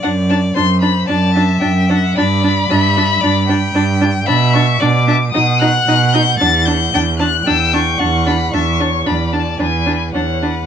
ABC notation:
X:1
M:4/4
L:1/8
Q:1/4=113
K:G
V:1 name="Violin"
f a c' b a2 g f | b6- b z | [K:Edor] b c' d'2 ^d' f'2 g' | a' g'2 f' e' c'2 b |
c'2 b a ^g2 f2 |]
V:2 name="Violin"
d2 c2 d e3 | d2 e2 d g3 | [K:Edor] e2 d e f4- | f2 g a g2 f2 |
e c d2 B2 c B |]
V:3 name="Viola"
D D D D D D D D | D D D D D D D D | [K:Edor] D D D D ^D D D D | D D D D D D D D |
D D D D D D D D |]
V:4 name="Cello" clef=bass
F,,2 F,,2 F,,2 F,,2 | G,,2 G,,2 G,,2 G,,2 | [K:Edor] B,,2 B,,2 B,,2 B,,2 | E,,2 E,,2 E,,2 E,,2 |
E,,2 E,,2 E,,2 E,,2 |]